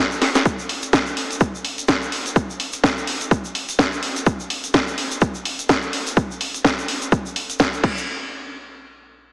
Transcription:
0.12 shaker soft
0.22 snare medium
0.22 open hi-hat loud
0.35 snare medium
0.35 closed hi-hat medium
0.35 shaker medium
0.45 kick loud
0.45 closed hi-hat medium
0.45 shaker medium
0.59 shaker soft
0.69 open hi-hat loud
0.82 closed hi-hat medium
0.82 shaker medium
0.93 kick loud
0.93 snare loud
0.93 closed hi-hat medium
0.93 shaker medium
1.06 shaker soft
1.17 open hi-hat loud
1.31 closed hi-hat medium
1.31 shaker medium
1.40 kick loud
1.40 closed hi-hat medium
1.40 shaker medium
1.55 shaker soft
1.65 open hi-hat loud
1.78 closed hi-hat medium
1.78 shaker medium
1.88 kick loud
1.88 snare loud
1.88 closed hi-hat medium
1.88 shaker medium
2.02 shaker soft
2.12 open hi-hat loud
2.26 closed hi-hat medium
2.26 shaker medium
2.36 kick loud
2.36 closed hi-hat medium
2.36 shaker medium
2.50 shaker soft
2.60 open hi-hat loud
2.73 closed hi-hat medium
2.73 shaker medium
2.84 kick loud
2.84 snare loud
2.84 closed hi-hat medium
2.84 shaker medium
2.98 shaker soft
3.07 open hi-hat loud
3.21 closed hi-hat soft
3.21 shaker medium
3.31 kick loud
3.31 closed hi-hat medium
3.31 shaker medium
3.45 shaker soft
3.55 open hi-hat loud
3.69 closed hi-hat medium
3.69 shaker medium
3.79 kick loud
3.79 snare loud
3.79 closed hi-hat medium
3.79 shaker medium
3.93 shaker soft
4.03 open hi-hat loud
4.16 closed hi-hat medium
4.16 shaker medium
4.26 kick loud
4.26 closed hi-hat medium
4.26 shaker medium
4.40 shaker soft
4.50 open hi-hat loud
4.64 closed hi-hat soft
4.64 shaker medium
4.74 kick loud
4.74 snare loud
4.74 closed hi-hat medium
4.74 shaker medium
4.88 shaker soft
4.98 open hi-hat loud
5.12 closed hi-hat medium
5.12 shaker medium
5.21 kick loud
5.21 closed hi-hat medium
5.21 shaker medium
5.35 shaker soft
5.45 open hi-hat loud
5.59 closed hi-hat soft
5.59 shaker medium
5.69 kick loud
5.69 snare loud
5.69 closed hi-hat medium
5.69 shaker medium
5.82 shaker soft
5.93 open hi-hat loud
6.07 closed hi-hat soft
6.07 shaker medium
6.17 kick loud
6.17 closed hi-hat medium
6.17 shaker medium
6.31 shaker soft
6.41 open hi-hat loud
6.54 closed hi-hat soft
6.54 shaker medium
6.64 kick loud
6.64 snare loud
6.64 closed hi-hat medium
6.64 shaker medium
6.78 shaker soft
6.88 open hi-hat loud
7.02 closed hi-hat soft
7.02 shaker medium
7.12 kick loud
7.12 closed hi-hat medium
7.12 shaker medium
7.26 shaker soft
7.36 open hi-hat loud
7.50 closed hi-hat soft
7.50 shaker medium
7.59 kick loud
7.59 snare loud
7.59 closed hi-hat medium
7.59 shaker medium
7.73 shaker soft
7.84 kick loud
7.84 crash medium
7.98 shaker medium

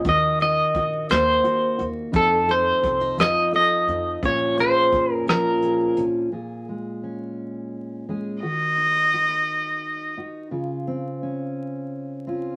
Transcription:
0.05 0.61 D#2 medium
0.05 3.17 D#3 medium
0.05 0.40 F#4 medium
0.05 kick medium
0.05 closed hi-hat medium
0.09 0.39 D#5 medium
0.40 0.75 F#4 medium
0.40 1.10 D#5 medium
0.40 closed hi-hat soft
0.74 1.03 A#1 medium
0.74 1.43 F#4 medium
0.74 kick medium
0.74 closed hi-hat soft
1.09 1.38 D#2 medium
1.09 2.10 A#3 medium
1.09 1.85 C5 medium
1.09 cross-stick medium
1.09 closed hi-hat medium
1.44 1.77 F#4 medium
1.44 closed hi-hat soft
1.79 2.07 D#2 medium
1.79 2.10 F#4 medium
1.79 closed hi-hat soft
2.12 4.22 F2 medium
2.12 2.70 F2 loud
2.12 2.82 D#4 medium
2.12 kick medium
2.12 closed hi-hat medium
2.16 2.51 A4 medium
2.48 3.51 A4 medium
2.48 3.21 C5 medium
2.48 closed hi-hat soft
2.83 3.12 C2 medium
2.83 3.01 C4 medium
2.83 kick medium
2.83 closed hi-hat soft
3.01 3.88 D#4 soft
3.17 3.46 F2 medium
3.17 5.28 F3 medium
3.17 3.55 D#5 medium
3.17 cross-stick medium
3.17 closed hi-hat medium
3.52 4.18 A4 medium
3.52 4.25 D#5 medium
3.52 closed hi-hat soft
3.87 4.16 F2 medium
3.87 4.19 D#4 medium
3.87 closed hi-hat soft
4.23 4.79 A#1 medium
4.23 6.31 A#2 medium
4.23 4.92 C#4 medium
4.23 4.57 C#5 medium
4.23 kick medium
4.23 closed hi-hat medium
4.58 5.62 G#4 medium
4.58 5.13 C5 medium
4.58 closed hi-hat soft
4.92 5.20 F2 medium
4.92 5.97 C#4 medium
4.92 kick medium
4.92 closed hi-hat soft
5.13 5.29 A#4 medium
5.27 5.55 A#1 medium
5.27 6.29 F3 medium
5.27 6.03 A#4 medium
5.27 cross-stick medium
5.27 closed hi-hat medium
5.62 6.29 G#4 soft
5.62 closed hi-hat soft
5.97 6.25 A#1 medium
5.97 6.29 C#4 soft
5.97 closed hi-hat soft
6.32 8.42 A#2 soft
6.32 8.07 G#4 soft
6.69 8.08 G#3 soft
7.03 8.08 C#4 soft
8.09 8.43 G#3 soft
8.09 8.39 C#4 soft
8.09 8.39 G#4 soft
8.42 10.51 D#3 soft
8.42 9.12 F#4 soft
8.42 10.12 D#5 medium
8.78 10.16 D#4 soft
9.14 10.17 F#4 soft
10.17 10.47 D#4 soft
10.17 10.48 F#4 soft
10.51 12.56 C#3 medium
10.51 12.28 F4 soft
10.88 12.26 C4 soft
11.23 12.26 C#4 soft
12.27 12.56 C4 soft
12.27 12.56 C#4 soft
12.27 12.56 F4 soft

